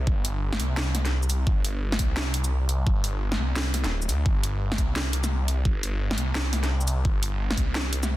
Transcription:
0.07 detuned saw bass G1, kick
0.25 closed hi-hat
0.53 snare
0.59 detuned saw bass C2, closed hi-hat
0.77 snare
0.95 snare, closed hi-hat
1.05 snare, closed hi-hat
1.23 shaker
1.30 closed hi-hat, shaker
1.47 detuned saw bass G1, kick
1.65 closed hi-hat
1.92 snare
1.99 detuned saw bass C2, kick, closed hi-hat
2.17 snare
2.34 closed hi-hat
2.44 closed hi-hat, shaker
2.69 closed hi-hat
2.87 detuned saw bass G1, kick
3.04 closed hi-hat
3.32 snare
3.39 detuned saw bass C2
3.56 snare
3.74 snare, closed hi-hat
3.84 detuned saw bass D1, snare, closed hi-hat
4.02 shaker
4.09 detuned saw bass D2, closed hi-hat, shaker
4.26 detuned saw bass G1, kick
4.43 closed hi-hat
4.72 snare
4.78 detuned saw bass C2, kick, closed hi-hat
4.96 snare
5.13 closed hi-hat
5.24 snare, closed hi-hat, shaker
5.48 closed hi-hat
5.65 detuned saw bass G1, kick
5.83 closed hi-hat
6.11 snare
6.18 detuned saw bass C2, closed hi-hat
6.35 snare
6.53 snare, closed hi-hat
6.63 snare, closed hi-hat
6.81 shaker
6.88 closed hi-hat, shaker
7.05 detuned saw bass G1, kick
7.23 closed hi-hat
7.51 snare
7.57 detuned saw bass C2, kick, closed hi-hat
7.75 snare
7.93 closed hi-hat
8.03 snare, shaker

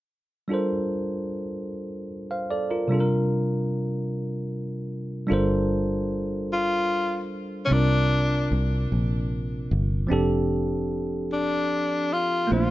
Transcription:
0.48 tine electric piano G3 D4 F4 A4
0.53 tine electric piano A#4 C5
2.31 tine electric piano C5 F5
2.51 tine electric piano A4 D5
2.71 tine electric piano F4 A#4
2.88 tine electric piano C3 G3 D4
2.92 tine electric piano F4 A4
3.00 tine electric piano A#4
5.27 tine electric piano G3 D4 F4 A4
5.32 fingered electric bass G1, tine electric piano A#4 C5
6.53 tenor saxophone F4
7.65 tine electric piano C3 C4, tenor saxophone C#4
7.70 fingered electric bass C2, tine electric piano D4 F4 A#4, tenor saxophone D4
8.52 fingered electric bass C2
8.92 fingered electric bass A#1
9.71 fingered electric bass G1
10.07 tine electric piano F3 C4 D4
10.11 fingered electric bass F1, tine electric piano G4 A4
11.32 tenor saxophone D4
12.13 tenor saxophone F4
12.47 tine electric piano A3 A#3 C4
12.52 fingered electric bass A#1, tine electric piano F4 C5, tenor saxophone F4
12.56 tine electric piano D4

